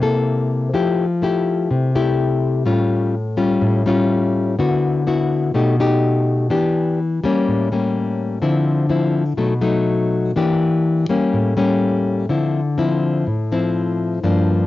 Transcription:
Already playing: C3
0.02 A#3 E4 A4
0.73 F3 A3 E4 G4
1.22 A3 E4 G4
1.71 C3
1.95 A3 E4 G4
2.66 A2 G3 C#4 F4
3.37 G3 C#4 F4
3.62 A2
3.86 G3 C#4 F4
4.59 D3 B3 E4 F#4
5.07 B3 E4 F#4
5.54 B2 A3 D#4 G4
5.80 A3 D#4 G4
6.50 E3 B3 D4 G4
7.24 G3 A#3 C#4
7.48 A2
7.72 G3 A#3 C#4
8.42 D3 F3 C4 E4
8.89 F3 C4 E4
9.37 B2 F#3 A3 D#4
9.61 F#3 A3 D#4
10.36 E3 A#3 D4 G4
11.09 G3 A#3 C#4
11.33 A2
11.57 G3 A#3 C#4
12.29 D3 F3 C4 E4
12.78 F3 C4 E4
13.27 A2
13.52 F3 C4 E4
14.23 G2 F3 A#3 D4

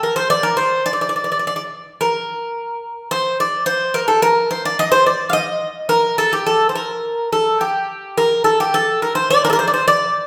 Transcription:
0.03 A#4
0.16 C5
0.30 D5
0.43 A#4
0.57 C5
0.86 D5
0.93 D5
1.01 D5
1.09 D5
1.16 D5
1.24 D5
1.32 D5
1.39 D5
1.47 D5
1.56 D5
2.01 A#4
3.11 C5
3.40 D5
3.66 C5
3.94 A#4
4.08 A4
4.22 A#4
4.51 C5
4.65 D5
4.79 D#5
4.92 C5
5.06 D5
5.30 D#5 F5
5.89 A#4
6.18 A4
6.33 G4
6.47 A4
6.69 C5
6.75 A#4
7.33 A4
7.61 G4
8.18 A#4
8.44 A4
8.60 G4
8.74 A4
9.02 A#4
9.15 C5
9.30 D5
9.45 A#4
9.50 A4 A#4
9.59 C5
9.68 D5
9.74 C5
9.88 D5

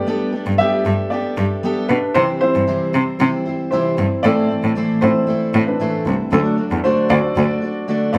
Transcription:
Already playing: G3 A3 B3 G4 D5
0.06 G3 B3 D4 G4 A4
0.33 D4 G4 A4
0.46 G2
0.58 G3 B3 D4 G4 A4 E5
0.85 G2 D4 G4 A4
1.10 B3 D4 G4 A4 D5
1.37 G2 D4 G4 A4
1.63 G3 B3 D4 G4 A4
1.88 B2 D4 G4 A4 B4
2.14 C3 E3 G3 C4 E4 C5
2.41 G3 C4 E4 C5
2.55 G2
2.67 C3 E3 G3 C4 E4 C5
2.93 C3 G3 C4 E4 C5
3.19 C3 E3 G3 C4 E4 C5
3.46 G3 C4 E4 C5
3.71 C3 E3 G3 C4 E4 C5
3.97 G2 G3 C4 E4 C5
4.23 A2 E3 A3 C4 E4 A4 C5 D5
4.49 A3 C4 E4 C5
4.64 A2
4.75 A2 E3 A3 C4 E4 C5
5.01 A2 E3 A3 C4 E4 C5
5.27 A3 C4 E4 C5
5.53 A2 A3 C4 E4 C5
5.67 D4 B4
5.79 A2 E3 A3 C4 E4 C5
6.06 C2 A3 C4 E4 C5
6.32 D2 D3 F#3 A3 D4 F#4 A4 D5
6.57 D4 F#4 D5
6.71 E2
6.84 D3 A3 D4 F#4 C5 D5
7.09 D2 D4 F#4 D5
7.36 D2 A3 D4 F#4 D5
7.62 D4 F#4 D5
7.88 D3 A3 D4 F#4 D5
8.13 G2 G3 A3 B3 B4 D5

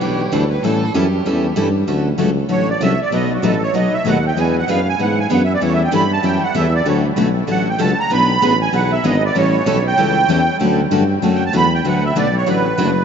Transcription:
0.01 B1 E3 G3 B3 D4 E4 G4 B4
0.32 D2 E3 G3 B3 D4 E4 G4 A4 B4
0.51 B4
0.63 A2 E3 G3 C#4 E4 A4
0.94 F#2 E3 G3 C#4 E4 G4 A4
1.25 E2 E3 G3 C#4 E4 A4
1.56 G2 E3 G3 C#4 E4 A4
1.87 D2 D3 F#3 A3 C#4 F#4 A4
2.18 C#2 D3 F#3 A3 C#4 F#4 A4
2.49 A1 D3 F#3 A3 C#4 F#4 A4 C#5
2.70 D5
2.80 C2 D3 F#3 A3 C#4 F#4 A4 E5
3.02 D5
3.11 B1 B2 F#3 A3 D#4 F#4 B4 D#5
3.34 F#4
3.42 A1 B2 F#3 A3 D#4 F#4 A4 B4
3.63 C#5
3.74 B1 B2 F#3 A3 D#4 F#4 B4 D#5
3.93 B1 E5
4.05 D#2 B2 F#3 A3 D#4 F#4 B4 F#5
4.27 G5
4.36 E2 E3 B3 D4 G#4 B4
4.40 G#5
4.59 F#5
4.68 F#2 E3 B3 D4 G#4 B4 F5
4.89 G#5
4.99 G#2 E3 B3 D4 G#4 B4 F#5
5.20 G#5
5.30 F#2 E3 B3 D4 G#4 B4
5.34 F#5
5.44 E5
5.54 D5
5.61 E2 E3 G3 C#4 E4 A4
5.65 C#5
5.73 E5
5.84 G5
5.92 G2 E3 G3 C#4 E4 A4 B5
6.13 A5
6.23 F#2 E3 G3 C#4 E4 A4 G5
6.41 F#2 F#5
6.54 E2 E3 G3 C#4 E4 A4 E5
6.75 D5
6.85 D2 D3 F#3 A3 C#4 F#4 A4 C#5
7.16 B1 D3 F#3 A3 C#4 F#4 A4
7.47 A1 D3 F#3 A3 C#4 F#4 A4 F#5
7.70 G5
7.78 C#2 D3 F#3 A3 C#4 F#4 A4 A5
7.98 C#2 A#5
8.10 B1 E3 B3 D4 G#4 B4 B5
8.41 A1 E3 B3 D4 G#4 B4
8.62 G#5
8.72 B1 E3 B3 D4 G#4 B4 F#5
8.92 E5
9.03 G#1 E3 B3 D4 G#4 B4 D#5
9.26 D5
9.35 A1 E3 G3 C#4 E4 A4 C#5
9.66 B1 E3 G3 C#4 E4 A4
9.87 G5
9.97 C#2 E3 G3 C#4 E4 A4
10.29 E2 E3 G3 C#4 E4 A4
10.60 D2 D3 F#3 A3 C#4 F#4 A4
10.91 G2 D3 F#3 A3 C#4 F#4 A4
11.22 F#2 D3 F#3 A3 C#4 F#4 A4
11.35 G5
11.46 A5
11.53 E2 D3 F#3 A3 C#4 F#4 A4 B5
11.74 G5
11.84 D2 D3 F#3 A3 D4 F#4 B4 F#5
12.06 E5
12.15 B1 D3 F#3 A3 D4 F#4 B4 D5
12.37 C#5
12.46 A1 D3 F#3 A3 D4 F#4 B4
12.78 F#1 D3 F#3 A3 D4 F#4 B4

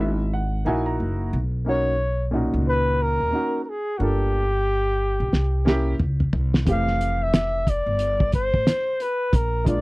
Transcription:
Already playing: G#1 A#3 C#4 E4 F#4
0.01 E5
0.34 F#5
0.65 A#1 A#3 D#4 E4 F#4 G#5
0.86 A#5
1.00 F#1
1.33 B1
1.65 A#3 C#4 D#4 F#4
1.69 C#5
2.31 A#2 C#4 D#4 F#4
2.54 C#2
2.68 B4
3.02 A#4
3.20 D#2
3.31 A#3 C#4 D#4 F#4
3.64 A#4
3.69 G#4
3.97 G1 A#3 D4 F4 F#4
4.02 G4 A4
5.20 A#1
5.33 C2, snare
5.65 A#3 C#4 E4 G4, snare
5.99 C#2, mid tom
6.20 mid tom
6.33 C2, floor tom
6.54 snare
6.65 F1 E3 A3 C4 G4, kick, closed hi-hat
6.70 F5
6.87 snare
7.01 closed hi-hat
7.23 E5
7.34 snare, closed hi-hat
7.67 D5, kick, closed hi-hat
7.86 G1
7.99 closed hi-hat
8.20 kick
8.32 C5, kick, closed hi-hat
8.54 A1, kick
8.67 snare, closed hi-hat
9.00 B4, closed hi-hat
9.33 A#1 A#4, kick, closed hi-hat
9.65 G#3 A#3 D4 F4 D5, kick, closed hi-hat

